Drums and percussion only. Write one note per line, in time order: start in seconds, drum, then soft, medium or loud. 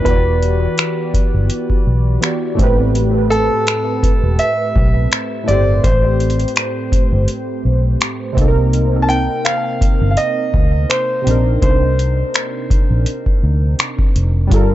0.06 kick loud
0.06 closed hi-hat medium
0.43 closed hi-hat medium
0.78 finger snap loud
0.78 closed hi-hat medium
1.14 kick medium
1.14 closed hi-hat medium
1.50 closed hi-hat medium
1.70 kick medium
2.23 finger snap loud
2.23 closed hi-hat medium
2.59 kick loud
2.59 closed hi-hat medium
2.95 closed hi-hat medium
3.32 closed hi-hat medium
3.67 finger snap loud
3.67 closed hi-hat medium
4.03 kick medium
4.03 closed hi-hat medium
4.39 closed hi-hat medium
4.76 kick medium
5.12 finger snap loud
5.12 closed hi-hat medium
5.49 closed hi-hat medium
5.84 kick loud
5.84 closed hi-hat medium
6.20 closed hi-hat soft
6.30 closed hi-hat soft
6.40 closed hi-hat soft
6.48 closed hi-hat soft
6.56 finger snap loud
6.56 closed hi-hat medium
6.92 kick medium
6.92 closed hi-hat medium
7.28 closed hi-hat medium
8.01 finger snap loud
8.01 closed hi-hat medium
8.37 kick loud
8.37 closed hi-hat medium
8.73 closed hi-hat medium
9.10 closed hi-hat medium
9.45 finger snap loud
9.45 closed hi-hat medium
9.81 kick medium
9.81 closed hi-hat medium
10.17 closed hi-hat medium
10.54 kick medium
10.90 finger snap loud
10.90 closed hi-hat medium
11.27 closed hi-hat medium
11.62 kick loud
11.62 closed hi-hat medium
11.99 closed hi-hat medium
12.34 finger snap loud
12.34 closed hi-hat medium
12.70 kick medium
12.70 closed hi-hat medium
13.06 closed hi-hat medium
13.26 kick medium
13.79 finger snap loud
13.79 closed hi-hat medium
13.99 kick medium
14.16 closed hi-hat medium
14.51 kick loud
14.51 closed hi-hat medium